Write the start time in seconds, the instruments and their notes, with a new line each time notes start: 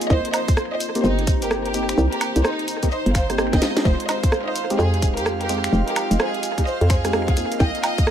Already playing: synth stab A#3 C4 D#4 F4, ambient pad F4 D#5
0.01 closed hi-hat, shaker
0.10 fm bass C2, ambient pad D#4, violin section C5 D#5, kick, shaker
0.16 ambient pad C5
0.25 closed hi-hat
0.34 violin section C5 D#5, finger snap, closed hi-hat, high woodblock, shaker
0.48 kick, closed hi-hat, shaker
0.57 cross-stick, shaker
0.72 violin section C5 D#5, ambient pad A#5
0.80 closed hi-hat, shaker
0.95 synth stab A#3 C4 D#4 G4, closed hi-hat, shaker
1.04 fm bass G1, violin section D#4 C5, shaker
1.19 closed hi-hat
1.27 fm bass A#1, kick, closed hi-hat, shaker
1.42 fm bass G1, violin section G4 A#4, closed hi-hat, shaker
1.51 cross-stick, shaker
1.65 violin section G4 A#4, closed hi-hat
1.74 synth stab A#3 C4 D#4 G4, closed hi-hat, shaker
1.89 finger snap, closed hi-hat, shaker
1.98 fm bass C2, shaker
2.12 violin section G4 A#4, closed hi-hat
2.21 finger snap, closed hi-hat, high woodblock, shaker
2.36 fm bass C2, closed hi-hat, shaker
2.44 violin section D#4 C5, cross-stick, shaker
2.59 closed hi-hat
2.68 closed hi-hat, shaker
2.83 synth stab A#3 C4 D#4 G4, kick, closed hi-hat, shaker
2.91 violin section C5 D#5, shaker
3.06 fm bass G1, closed hi-hat
3.15 violin section C5 F5, finger snap, kick, closed hi-hat, shaker
3.30 synth stab A#3 C4 D#4 G4, cross-stick, closed hi-hat, shaker
3.38 synth stab A#3 C4 D#4 G4, cross-stick, shaker
3.53 fm bass G1, violin section D#5 G5, kick, snare, closed hi-hat
3.62 synth stab G#3 C4 D#4 F4, snare, closed hi-hat, shaker
3.77 snare, closed hi-hat, shaker
3.85 fm bass F1, ambient pad F4, violin section C5 D#5, analog synth pad F5, kick, shaker
4.00 closed hi-hat
4.09 violin section C5 D#5, ambient pad D#5, finger snap, closed hi-hat, high woodblock, shaker
4.23 kick, closed hi-hat, shaker
4.32 cross-stick, shaker
4.47 violin section C5 D#5
4.56 closed hi-hat, shaker
4.70 synth stab G#3 C4 D#4 G4, closed hi-hat, shaker
4.79 fm bass F2, violin section G#4 C5, shaker
4.94 closed hi-hat
5.02 fm bass D#1, kick, closed hi-hat, shaker
5.17 fm bass F2, violin section G4 A#4, closed hi-hat, shaker
5.26 cross-stick, shaker
5.41 violin section G4 A#4, closed hi-hat
5.49 synth stab G#3 C4 D#4 G4, closed hi-hat, shaker
5.64 finger snap, closed hi-hat, shaker
5.73 fm bass F1, shaker
5.88 violin section G4 A#4, closed hi-hat
5.96 finger snap, closed hi-hat, high woodblock, shaker
6.11 fm bass F1, closed hi-hat, shaker
6.20 violin section G#4 C5, cross-stick, shaker
6.34 closed hi-hat
6.43 closed hi-hat, shaker
6.58 synth stab G#3 C4 D#4 G4, kick, closed hi-hat, shaker
6.67 violin section C5 D#5, shaker
6.81 fm bass F2, closed hi-hat
6.90 violin section G#4 C5, finger snap, kick, closed hi-hat, shaker
7.05 synth stab G#3 C4 D#4 G4, cross-stick, closed hi-hat, shaker
7.13 synth stab G#3 C4 D#4 G4, cross-stick, shaker
7.28 violin section G#4 F5, kick, closed hi-hat
7.37 synth stab A#3 C4 D#4 F4, closed hi-hat, shaker
7.52 closed hi-hat, shaker
7.60 fm bass C2, ambient pad D#4, violin section D#5 G5, kick, shaker
7.75 closed hi-hat
7.82 ambient pad C5, violin section D#5 G5, finger snap, closed hi-hat, high woodblock, shaker
7.98 kick, closed hi-hat, shaker
8.07 cross-stick, shaker